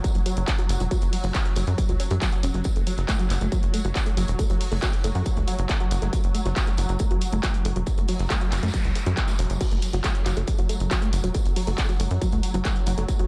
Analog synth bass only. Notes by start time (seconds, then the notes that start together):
0.15 F#1
0.37 F#1
0.69 F#1
0.80 E1
1.02 F#1
1.24 F#1
1.56 F#1
1.67 F#2
1.89 C#2
2.11 F#2
2.43 E1
2.54 F#1
2.76 F#1
2.98 F#1
3.30 F#1
3.41 F#1
3.63 F#1
3.85 F#1
4.17 F#1
4.28 E1
4.50 F#1
4.72 F#1
5.04 F#1
5.15 F#2
5.37 C#2
5.59 F#1
5.91 F#1
6.02 F#1
6.24 F#1
6.46 F#1
6.78 F#1
6.89 F#1
7.11 F#1
7.32 F#1
7.65 F#1
7.76 E1
7.98 F#1
8.19 F#1
8.52 F#1
8.63 F#2
8.85 C#2
9.06 F#2
9.39 E1
9.50 F#1
9.72 F#1
9.93 F#1
10.26 F#1
10.37 F#1
10.59 F#1
10.80 F#1
11.13 F#1
11.24 E1
11.46 F#1
11.67 F#1
12.00 F#1
12.11 F#2
12.32 C#2
12.54 F#1
12.87 F#1
12.98 F#1
13.19 F#1